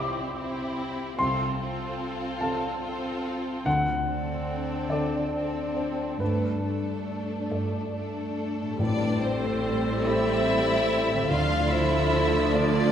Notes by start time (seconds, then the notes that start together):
Already playing: C2 C3 C4 E4 G4 E5 C6 D6
0.37 C4 E4 G4
0.79 C4
1.18 C2 C3 C4 F4 A4 C6
1.59 C4 F4 A4
2.02 A4
2.41 C3 A4 F5 A5
2.82 C4 F4 A4
3.24 C4
3.66 D2 D3 F#5
4.07 C4 D4 A4
4.50 A4
4.90 D3 A4 D5
5.33 C4 D4 A4
5.76 C5
6.20 G2 A3 D4 A4 B4
6.62 A3 D4 A4
7.07 A4
7.50 G2 A4 D5
7.92 A3 D4 A4
8.37 D4
8.62 A2
8.66 A3
8.71 G4
8.75 A1 A2 C4 D4
8.79 A2 G3 C4 A4 B4 D5
9.22 C4 A4 C5
10.05 A3 E4 G4 C5 E5
11.12 D3
11.17 A3
11.22 F3
11.29 D2 D3 F3 A3 F4 A4 D5 F5
11.70 E4 C5 E5
12.51 A3 D4 F4 A4 D5